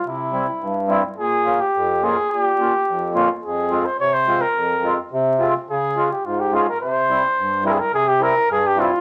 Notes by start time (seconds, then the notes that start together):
0.04 C3 E4
0.32 G3 C4 E4
0.60 G2
0.88 G3 C4 E4
1.16 A#2 G#4
1.45 A#3 C#4 F4
1.61 G4
1.73 F2
2.02 A#3 C#4 F4 G#4
2.31 A#2 G#4
2.42 G4
2.59 A#3 C#4 F4
2.87 F2
3.14 A#3 C#4 F4
3.43 F2 G#4
3.70 G#3 C4 F4
3.86 C5
3.99 C3 C#5
4.13 C5
4.27 G#3 C4 F4
4.41 A#4
4.54 F2
4.83 G#3 C4 F4
5.11 C3
5.39 G#3 C4 F4
5.68 C#3 G#4
5.96 G#3 C#4 F4
6.11 G4
6.24 G#2 F4
6.40 G4
6.52 G#3 C#4 F4 G#4
6.69 A#4
6.80 C3 C5
7.09 G3 C4 E4
7.37 G2
7.63 G3 C4 E4 A#4
7.72 G#4
7.80 A#4
7.92 C3 G#4
8.08 G4
8.19 G3 C4 E4 A#4
8.47 G2
8.52 G#4
8.67 G4
8.76 G3 C4 E4
8.80 F4